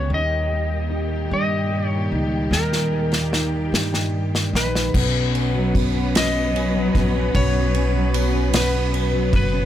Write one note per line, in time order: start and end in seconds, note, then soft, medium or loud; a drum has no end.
0.00 0.11 F#2 medium
0.00 0.19 B3 soft
0.00 0.19 C#4 medium
0.00 0.11 C#5 medium
0.10 1.27 D#2 medium
0.10 4.91 A#2 medium
0.10 2.50 D#3 medium
0.10 4.91 D#3 medium
0.10 4.90 G3 medium
0.10 4.91 G4 medium
0.14 1.32 D#5 medium
0.50 1.69 A#3 soft
0.90 2.11 D#4 medium
1.30 2.07 G2 medium
1.30 3.72 G3 medium
1.30 1.89 D#5 medium
1.70 2.91 A#3 soft
1.89 2.09 C#5 medium
2.12 2.49 C#2 medium
2.12 3.31 D#4 medium
2.51 3.68 D#2 medium
2.51 4.93 D#3 medium
2.51 3.69 A#4 medium
2.51 snare soft
2.73 snare soft
2.91 3.12 G#3 soft
3.12 4.13 A#3 soft
3.12 snare soft
3.32 4.52 D#4 soft
3.32 snare medium
3.72 4.49 G2 medium
3.72 5.02 G3 medium
3.72 snare medium
3.94 snare medium
4.35 snare medium
4.53 4.92 A#1 medium
4.53 5.02 D#4 medium
4.53 6.21 B4 medium
4.53 snare medium
4.75 snare medium
4.93 6.91 B1 medium
4.93 6.15 B2 medium
4.93 9.65 F#3 medium
4.93 9.65 B3 medium
4.93 9.65 C#4 medium
4.93 9.65 B4 medium
4.93 kick loud
4.93 crash medium
5.14 5.75 B3 medium
5.35 5.93 C#4 medium
5.35 ride soft
5.55 6.73 F#3 medium
5.75 6.34 B3 medium
5.75 kick medium
5.75 ride medium
5.94 6.52 C#4 medium
6.15 7.33 D#5 loud
6.15 snare loud
6.15 ride medium
6.34 6.94 B3 medium
6.54 7.13 C#4 medium
6.54 ride soft
6.74 7.93 F#3 medium
6.95 7.33 A#1 medium
6.95 7.55 B3 medium
6.95 kick medium
6.95 ride medium
7.14 7.74 C#4 medium
7.34 9.30 B1 medium
7.34 8.52 B2 medium
7.34 8.59 C#5 medium
7.34 kick loud
7.34 ride medium
7.56 8.14 B3 soft
7.74 8.32 C#4 medium
7.74 ride soft
7.94 9.12 F#3 medium
8.14 8.73 B3 medium
8.14 ride medium
8.34 8.91 C#4 medium
8.53 9.65 B2 medium
8.53 9.35 B4 medium
8.53 snare loud
8.53 ride medium
8.73 9.32 B3 medium
8.93 9.51 C#4 medium
8.93 ride soft
9.13 9.65 F#3 medium
9.32 9.65 F#1 medium
9.32 9.65 B3 medium
9.32 9.65 B4 medium
9.32 kick medium
9.32 ride medium
9.52 9.65 C#4 medium